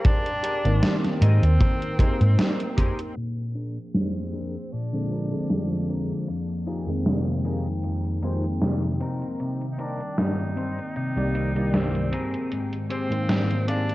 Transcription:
Already playing: G4 G#4 A#4 C5 G5 C6
0.05 D4, kick, closed hi-hat
0.26 closed hi-hat
0.43 G4 G#4 A#4 D5, closed hi-hat
0.65 G#1 D#3 A#3 C4, closed hi-hat
0.83 snare, closed hi-hat
1.04 snare, closed hi-hat
1.21 G#2 C4 G4 G#4 A#4 D#5 A#5, closed hi-hat
1.42 D#2, closed hi-hat
1.61 kick, closed hi-hat
1.82 closed hi-hat
1.99 A#3 C4 D#4 G4 G#4 A#4 C5, kick, closed hi-hat
2.21 G#2, closed hi-hat
2.39 snare, closed hi-hat
2.60 closed hi-hat
2.77 G4 G#4 A#4 C5, kick, closed hi-hat
2.99 closed hi-hat
3.17 A#2 F3 A#3 D4 G#4, closed hi-hat
3.38 closed hi-hat
3.55 D4 G#4 A#4, closed hi-hat
3.77 closed hi-hat
3.94 F2 C4, snare, closed hi-hat
4.33 D4 G#4 A#4, closed hi-hat
4.72 A#2 D4, closed hi-hat
4.93 D3 F3 G#3 C4, closed hi-hat
5.11 D4 G#4 A#4, closed hi-hat
5.31 D3 F3 G#3 C4
5.50 F2, snare, closed hi-hat
5.71 closed hi-hat
5.89 D4 G#4 A#4, closed hi-hat
6.11 closed hi-hat
6.28 F2 D#4 G5, closed hi-hat
6.50 closed hi-hat
6.66 D#4 F4 G4 G#4 A#4, closed hi-hat
6.86 F2 D#3 G#3 A#3 C4, closed hi-hat
7.06 C3, snare, closed hi-hat
7.27 closed hi-hat
7.44 D#4 F4 G4 G#4 A#4, closed hi-hat
7.66 closed hi-hat
7.84 F2, closed hi-hat
8.05 closed hi-hat
8.22 F2 D#3 G#3 A#3 C4 D#4 F4 G4 G#4 C5, closed hi-hat
8.44 closed hi-hat
8.62 C3, snare, closed hi-hat
8.83 closed hi-hat
9.00 D#3 G3 C4 D#4 A#4, closed hi-hat
9.22 closed hi-hat
9.40 C3, closed hi-hat
9.61 closed hi-hat
9.72 D#4
9.78 C4 D4 D#4 A#4, closed hi-hat
10.00 closed hi-hat
10.18 G2 D#4, snare, closed hi-hat
10.39 closed hi-hat
10.56 C4 D#4 C5, closed hi-hat
10.78 closed hi-hat
10.96 C3 D#4, closed hi-hat
11.16 C2 D#3 G3 A#3 D5, closed hi-hat
11.34 C4 D#4 A#4, closed hi-hat
11.55 C2 D#3 G3 A#3 D5, closed hi-hat
11.73 G2 C4, snare, closed hi-hat
11.95 closed hi-hat
12.12 C4 G4 G#4 A#4, closed hi-hat
12.34 closed hi-hat
12.52 G#2, closed hi-hat
12.73 closed hi-hat
12.89 C4 G4 G#4 C5, closed hi-hat
13.10 G#2 D#3 A#3 C4, closed hi-hat
13.29 G#2, snare, closed hi-hat
13.51 closed hi-hat
13.67 C4 D4 G4 G#4 A#4 F5, closed hi-hat
13.89 closed hi-hat

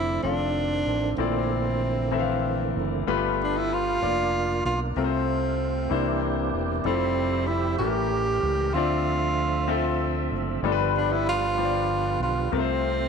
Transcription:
Already playing: F1 D3 F3 A3 C4 D4 E4 F4 A4 D5
0.23 F1 D#3 C4 D4 F4 A4 F5
0.86 A1
1.16 A#1 A#2 D3 E3 A3 A#3 C4 E4 A4 D5
2.12 E3 C4 A4 E5
2.19 F5
2.75 F#1
3.07 G1 G2 G3 A3 B3 F4 G4 B4
3.43 D4
3.57 E4
3.73 F4
4.02 F1 A#3 D4 F4 D5
4.65 B1 F4
4.96 C2 C3 A3 C4 F4 A#4
5.04 C5
5.90 C2 C3 E3 A#3 D4 E4 G4 C5
6.53 E1
6.84 F1 F3 G3 C4 E4 F4 A4 E5
7.47 E4
7.78 A1 A2 E3 A3 C#4 G4 A4 A#4
7.87 A#4
8.43 C#2
8.73 D2 D3 F3 A3 C4 F4 D5 E5
9.68 C4 F4 A4 E5
10.31 F#1
10.62 G1 G2 G3 B3 D4 F4 A4
10.72 B4
10.97 D4
11.12 E4
11.29 F4
11.58 G3 D4 F4 C5
11.65 D5
12.20 B1 F4
12.52 C2 C3 A3 C4 F4 A#4
12.60 C5

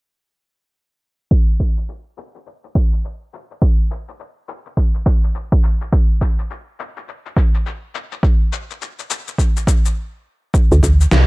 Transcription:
1.31 kick, shaker
1.60 kick, shaker
1.77 shaker
1.89 shaker
2.18 shaker
2.35 shaker
2.46 shaker
2.64 shaker
2.75 kick, shaker
2.93 shaker
3.05 shaker
3.34 shaker
3.51 shaker
3.62 kick, shaker
3.91 shaker
4.09 shaker
4.20 shaker
4.49 shaker
4.66 shaker
4.77 kick, shaker
4.95 shaker
5.06 kick, shaker
5.24 shaker
5.35 shaker
5.52 kick
5.63 shaker
5.81 shaker
5.93 kick, shaker
6.21 kick, shaker
6.39 shaker
6.51 shaker
6.80 shaker
6.97 shaker
7.09 shaker
7.26 shaker
7.37 kick, shaker
7.55 shaker
7.66 shaker
7.95 shaker
8.12 shaker
8.23 kick, shaker
8.53 shaker
8.71 shaker
8.82 shaker
8.99 shaker
9.10 shaker
9.28 shaker
9.38 kick, shaker
9.57 shaker
9.67 kick, shaker
9.85 shaker
10.54 kick, shaker
10.72 D2, shaker
10.83 D2, kick, shaker
11.01 shaker
11.11 C2, snare, shaker

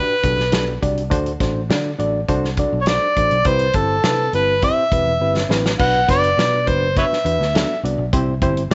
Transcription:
Already playing: D4 F#4 G4 B4
0.23 B1 D4 F#4 G4 A4, kick, closed hi-hat
0.38 B1, snare
0.52 B1 D4 F#4 G4 A4, snare, closed hi-hat
0.82 C2 D4 F#4 G4 D5, kick, closed hi-hat
0.97 closed hi-hat
1.10 D2 D4 F#4 A4 C5, kick, closed hi-hat
1.26 closed hi-hat
1.40 A1 D4 F#4 A4 C5, kick, snare, closed hi-hat
1.70 D3 D4 F#4 A4 D5, snare, closed hi-hat
1.99 A1 D4 F#4 A4 D5, closed hi-hat
2.28 C2 D4 F#4 A4 C5, kick, closed hi-hat
2.45 snare
2.57 D4 F#4 A4 D5, kick, closed hi-hat
2.73 B1
2.81 C#5
2.86 D4 F#4 A4 C5 D5, snare, closed hi-hat
3.16 A1 D4 F#4 A4 C5, kick, closed hi-hat
3.31 B1, closed hi-hat
3.45 C2 C4 E4 G4 B4 C5, kick, closed hi-hat
3.59 closed hi-hat
3.73 G1 C4 E4 G4 A4 C5, kick, closed hi-hat
4.04 C3 C4 E4 G4 B4, snare, closed hi-hat
4.33 G1 C4 E4 G4 B4, closed hi-hat
4.62 C4 E4 G4 C5 E5, kick, closed hi-hat
4.92 E1 C4 E4 G4 B4, kick, closed hi-hat
5.05 E1
5.20 G1 C4 E4 G4 B4
5.37 snare
5.49 A1 C4 E4 G4 B4, snare
5.66 snare
5.79 B1 B3 D4 F#4 B4 F#5, kick, crash
6.08 F#1 B3 D4 F#4 B4 D5, kick, snare, closed hi-hat
6.24 closed hi-hat
6.38 B2 B3 D4 F#4 B4, snare, closed hi-hat
6.67 F#1 B3 D4 F#4 B4 C5, kick, closed hi-hat
6.97 B3 D4 F#4 B4 C#5 E5, kick, closed hi-hat
7.13 snare
7.25 E2 B3 D4 F#4 B4, closed hi-hat
7.40 D2, snare
7.55 B3 D4 F#4 A4, snare, closed hi-hat
7.84 C2 B3 D4 F#4 D5, closed hi-hat
7.98 B1
8.13 C2 C4 E4 G4 C5, kick, closed hi-hat
8.42 G1 C4 E4 G4 C5, kick, closed hi-hat
8.57 closed hi-hat
8.71 C3

